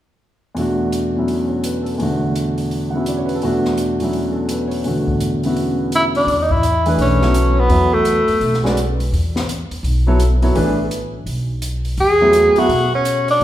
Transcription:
0.55 grand piano E2 B2 A3 D4, open hi-hat
0.60 grand piano F#4
0.92 closed hi-hat
1.16 grand piano B2 F#3 C#4 E4
1.28 open hi-hat
1.48 grand piano C#5
1.64 grand piano B4, closed hi-hat
1.83 grand piano A4, open hi-hat
1.98 grand piano E2 B2 D3 A3, open hi-hat
2.03 grand piano F#4
2.36 closed hi-hat
2.58 open hi-hat
2.71 open hi-hat
2.90 grand piano C#3 B3 F#5
2.95 grand piano E4 F#4 E5
3.06 grand piano D5, closed hi-hat
3.17 grand piano C#5
3.26 grand piano B4, open hi-hat
3.35 grand piano A4
3.42 grand piano E2 B2 A3 D4 F#4, open hi-hat
3.65 snare
3.78 closed hi-hat
4.00 grand piano B2 F#3 C#4 E4, open hi-hat
4.13 open hi-hat
4.32 grand piano A4
4.49 grand piano B4, closed hi-hat
4.68 grand piano C#5, open hi-hat
4.84 grand piano E2 B2 D3 A3 F#4, open hi-hat
5.07 kick
5.20 closed hi-hat
5.44 grand piano C#3 B3 E4 F#4, open hi-hat
5.56 open hi-hat
5.92 tenor saxophone E4, closed hi-hat
6.15 tenor saxophone D4, open hi-hat
6.27 upright bass E2, open hi-hat
6.42 tenor saxophone D#4
6.50 tenor saxophone E4, kick
6.63 closed hi-hat
6.86 grand piano E3 A3 D4 G#4 B4, open hi-hat
6.98 upright bass B1, tenor saxophone C#4, open hi-hat
7.22 grand piano F#3 B3 E4 A4 C#5, snare
7.34 closed hi-hat
7.60 tenor saxophone B3
7.69 upright bass E2, grand piano F#3 B3 E4 A4 C#5, open hi-hat
7.93 tenor saxophone A3
8.05 closed hi-hat
8.28 muted upright bass stroke, open hi-hat
8.41 upright bass B1, open hi-hat
8.54 snare
8.63 grand piano G#3 C#4 F#4 B4 D5, snare
8.77 closed hi-hat
9.00 open hi-hat
9.12 upright bass E2, open hi-hat
9.36 snare
9.49 closed hi-hat
9.71 muted upright bass stroke, open hi-hat
9.83 upright bass B1, open hi-hat
10.07 grand piano F#3 B3 E4 A4 C#5
10.20 closed hi-hat
10.42 grand piano F#3 B3 E4 A4 C#5, open hi-hat
10.55 upright bass A1, grand piano E3 A3 D4 G#4 B4, open hi-hat
10.91 closed hi-hat
11.26 upright bass B1, open hi-hat
11.62 closed hi-hat
11.85 open hi-hat
11.97 upright bass E2, tenor saxophone G#4, open hi-hat
12.21 grand piano F#3 A3 B3 E4 C#5
12.33 closed hi-hat
12.56 grand piano F#3 B3 E4 A4 E5, tenor saxophone F#4, muted upright bass stroke, open hi-hat
12.68 upright bass B2, open hi-hat
12.95 tenor saxophone C#4
13.05 closed hi-hat
13.28 tenor saxophone D4, open hi-hat
13.40 upright bass E2

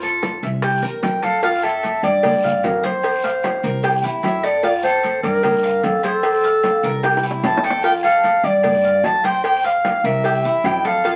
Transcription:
Already playing: upright bass F2, clarinet F4
0.02 cuban tres A4, high bongo, high conga, maracas
0.23 high bongo, high conga, high timbale, short guiro, maracas
0.42 upright bass C2, cuban tres E5, short guiro, maracas
0.62 cuban tres G4, high bongo, high conga, high timbale, long guiro, maracas
0.82 upright bass E2, cuban tres A#4, high bongo, high conga, maracas
1.03 upright bass F2, clarinet G5, high bongo, low bongo, high conga, high timbale, low timbale, short guiro, maracas
1.23 cuban tres A4, clarinet F5, high bongo, high conga, high timbale, short guiro, maracas
1.43 cuban tres F4, clarinet F5, cowbell, high conga, low agogo, long guiro, maracas
1.63 cuban tres A4, clarinet E5, high conga, low agogo
1.83 cowbell, high conga, short guiro, maracas
2.03 upright bass G2, cuban tres D5, clarinet D5, high conga, low agogo, short guiro, maracas
2.23 cowbell, high conga, low conga, low agogo, long guiro, maracas
2.44 cuban tres F5, high conga, low conga, maracas
2.63 upright bass F2, clarinet A#4, cowbell, high conga, low timbale, low agogo, short guiro, maracas
2.83 cuban tres C5, clarinet C5, cowbell, high conga, low agogo, short guiro, maracas
3.03 cowbell, high conga, low agogo, long guiro, maracas
3.24 cuban tres F5, cowbell, high conga
3.43 cowbell, high conga, low agogo, short guiro, maracas
3.63 upright bass C2, cuban tres A#4, short guiro, maracas
3.83 cuban tres G4, cowbell, high conga, low agogo, long guiro, maracas
4.03 upright bass E2, cuban tres E4, high conga
4.23 upright bass F2, clarinet E5, cowbell, high conga, low timbale, low agogo, short guiro, maracas
4.43 cuban tres A4, clarinet D5, cowbell, short guiro, maracas
4.63 cuban tres F4, clarinet D5, cowbell, high conga, low agogo, long guiro, maracas
4.83 cuban tres A4, clarinet C5, high conga, low agogo
5.03 cowbell, high conga, short guiro, maracas
5.23 upright bass G2, clarinet A#4, cuban tres D5, high conga, low agogo, short guiro, maracas
5.43 cowbell, high conga, low conga, low agogo, long guiro, maracas
5.64 cuban tres F5, high conga, maracas
5.83 upright bass F2, clarinet A4, cowbell, high conga, low agogo, short guiro, maracas
6.03 clarinet A4, cuban tres C5, cowbell, high conga, low agogo, short guiro, maracas
6.23 cowbell, high conga, low agogo, long guiro, maracas
6.44 cuban tres F5, cowbell, high conga
6.63 cowbell, high conga, low agogo, short guiro, maracas
6.83 upright bass C2, cuban tres A#4, short guiro, maracas
7.03 cuban tres G4, cowbell, high bongo, high conga, low agogo, long guiro, maracas
7.17 high bongo
7.23 cuban tres E4, high conga
7.31 low bongo
7.43 upright bass F2, clarinet A5, cowbell, low bongo, high conga, low timbale, low agogo, short guiro, maracas
7.57 low bongo
7.64 cuban tres A4, clarinet G5, cowbell, short guiro, maracas
7.70 low bongo
7.83 cuban tres F4, clarinet G5, cowbell, high conga, low agogo, long guiro, maracas
8.03 cuban tres A4, clarinet F5, high conga, low agogo, maracas
8.23 cowbell, high conga, short guiro, maracas
8.43 upright bass G2, cuban tres D5, clarinet D5, high conga, low agogo, short guiro, maracas
8.63 cowbell, high conga, low conga, low agogo, long guiro, maracas
8.84 cuban tres F5, high conga
9.03 upright bass F2, clarinet A5, cowbell, high conga, low timbale, low agogo, short guiro, maracas
9.24 cuban tres C5, clarinet G5, cowbell, high conga, low agogo, short guiro, maracas
9.44 clarinet G5, cowbell, high conga, low agogo, long guiro, maracas
9.64 cuban tres F5, clarinet F5, cowbell, high conga
9.85 cowbell, high conga, low agogo, short guiro, maracas
10.04 upright bass C2, cuban tres A#4, clarinet E5, short guiro, maracas
10.24 cuban tres G4, cowbell, high conga, low agogo, long guiro, maracas
10.44 upright bass E2, cuban tres E4, high conga
10.64 upright bass F2, clarinet G5, cowbell, high conga, low timbale, low agogo, short guiro, maracas
10.85 cuban tres A4, clarinet F5, cowbell, high conga, short guiro, maracas
11.04 cuban tres F4, cowbell, low agogo, long guiro, maracas

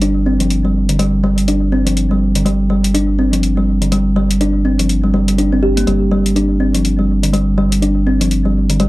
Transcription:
Already playing: analog synth bass G1
0.02 kalimba D4, closed hi-hat
0.26 kalimba C4
0.40 kalimba F3, closed hi-hat
0.50 closed hi-hat
0.65 kalimba G3
0.89 kalimba D3, closed hi-hat
0.99 kalimba G3, closed hi-hat
1.24 kalimba G3
1.38 closed hi-hat
1.48 kalimba D4, closed hi-hat
1.72 kalimba C4
1.87 kalimba F3, closed hi-hat
1.97 closed hi-hat
2.11 kalimba G3
2.35 kalimba D3, closed hi-hat
2.46 kalimba G3, closed hi-hat
2.70 kalimba G3
2.84 closed hi-hat
2.94 kalimba D4, closed hi-hat
3.19 kalimba C4
3.33 kalimba F3, closed hi-hat
3.43 closed hi-hat
3.57 kalimba G3
3.82 kalimba D3, closed hi-hat
3.92 kalimba G3, closed hi-hat
4.16 kalimba G3
4.31 closed hi-hat
4.41 kalimba D4, closed hi-hat
4.65 kalimba C4
4.79 kalimba F3, closed hi-hat
4.89 closed hi-hat
5.04 kalimba G3
5.14 kalimba G3
5.28 kalimba G3, closed hi-hat
5.38 kalimba D4, closed hi-hat
5.52 kalimba C4
5.63 kalimba G4
5.77 kalimba A#3, closed hi-hat
5.87 analog synth bass G1, kalimba G3, closed hi-hat
6.11 kalimba G3
6.26 closed hi-hat
6.36 kalimba D4, closed hi-hat
6.60 kalimba C4
6.75 kalimba F3, closed hi-hat
6.85 closed hi-hat
6.99 kalimba G3
7.23 kalimba D3, closed hi-hat
7.33 kalimba G3, closed hi-hat
7.58 kalimba G3
7.72 closed hi-hat
7.82 kalimba D4, closed hi-hat
8.07 kalimba C4
8.21 kalimba F3, closed hi-hat
8.31 closed hi-hat
8.45 kalimba G3
8.70 kalimba D3, closed hi-hat
8.80 kalimba G3, closed hi-hat

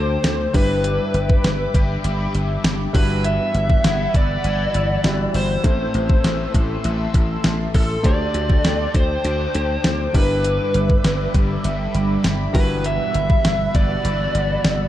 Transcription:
Already playing: slap bass D2, grand piano D3 A3 D4 G4 C5, overdriven electric guitar D3 A3 D4, analog synth pad A4 G5 C6 D6, lead electric guitar C5
0.24 slap bass D2, snare, closed hi-hat
0.53 slap bass G1, grand piano G2 G3 D4 E4 B4, overdriven electric guitar G3 D4 G4, analog synth pad G4 E5 B5 D6, lead electric guitar B4, kick, open hi-hat
0.84 closed hi-hat
1.14 slap bass G1, closed hi-hat
1.29 kick
1.44 slap bass G1, snare, closed hi-hat
1.74 slap bass G1, overdriven electric guitar D4 G4, kick, closed hi-hat
2.04 slap bass G1, overdriven electric guitar G3 D4 G4, closed hi-hat
2.34 slap bass G1, closed hi-hat
2.64 slap bass G1, snare, closed hi-hat
2.93 slap bass G1, grand piano G2 G3 E4 F#4 B4, overdriven electric guitar E3 B3 E4, analog synth pad G3 F#5 B5 E6, lead electric guitar B4, kick, open hi-hat
3.24 lead electric guitar E5, closed hi-hat
3.54 slap bass G1, closed hi-hat
3.70 kick
3.84 slap bass G1, overdriven electric guitar E3 B3 E4, snare, closed hi-hat
4.14 slap bass G1, lead electric guitar D5, kick, closed hi-hat
4.44 slap bass G1, overdriven electric guitar E3 E4, closed hi-hat
4.74 slap bass G1, closed hi-hat
5.04 slap bass G1, grand piano G3 E4 F#4 B5, snare, closed hi-hat
5.34 slap bass G1, lead electric guitar C5, open hi-hat
5.63 slap bass A1, overdriven electric guitar A2 E3 A3, grand piano A2 A3 C4 E4 C5, analog synth pad A4 E5 C6 E6, kick, closed hi-hat
5.94 slap bass A1, closed hi-hat
6.09 kick
6.24 slap bass A1, overdriven electric guitar A2 E3 A3, snare, closed hi-hat
6.54 slap bass A1, overdriven electric guitar E3 A3, kick, closed hi-hat
6.84 slap bass A1, overdriven electric guitar A2 E3 A3, closed hi-hat
7.14 slap bass A1, kick, closed hi-hat
7.44 slap bass A1, snare, closed hi-hat
7.74 slap bass A1, lead electric guitar A4, kick, open hi-hat
8.03 slap bass D2, grand piano D3 A3 D4 G4 C5, overdriven electric guitar D3 A3 D4, lead electric guitar D5, analog synth pad G5 D6, kick, closed hi-hat
8.34 slap bass D2, closed hi-hat
8.50 kick
8.64 slap bass D2, overdriven electric guitar D3 A3 D4, snare, closed hi-hat
8.94 slap bass D2, lead electric guitar C5, kick, closed hi-hat
9.24 slap bass D2, overdriven electric guitar D3 A3 D4, closed hi-hat
9.55 slap bass D2, closed hi-hat
9.84 slap bass D2, snare, closed hi-hat
10.13 slap bass G1, grand piano G2 G3 D4 E4 A#4, overdriven electric guitar G2 D3 G3, analog synth pad G3 E5 B5, lead electric guitar B4, kick, open hi-hat
10.22 grand piano B4
10.44 closed hi-hat
10.74 slap bass G1, closed hi-hat
10.90 kick
11.04 slap bass G1, overdriven electric guitar G2 D3 G3, snare, closed hi-hat
11.34 slap bass G1, overdriven electric guitar D3 G3, kick, closed hi-hat
11.64 slap bass G1, overdriven electric guitar G2 D3 G3, closed hi-hat
11.94 slap bass G1, closed hi-hat
12.24 slap bass G1, snare, closed hi-hat
12.53 slap bass G1, overdriven electric guitar E2 B2 E3, grand piano G2 G3 E4 F#4 B4, lead electric guitar B4, analog synth pad F#5 E6, kick, open hi-hat
12.84 lead electric guitar E5, closed hi-hat
13.14 slap bass G1, closed hi-hat
13.30 kick
13.45 slap bass G1, snare, closed hi-hat
13.74 slap bass G1, overdriven electric guitar B2 E3, lead electric guitar D5, kick, closed hi-hat
14.03 slap bass G1, overdriven electric guitar E2 B2 E3, closed hi-hat
14.35 slap bass G1, closed hi-hat
14.64 slap bass G1, snare, closed hi-hat

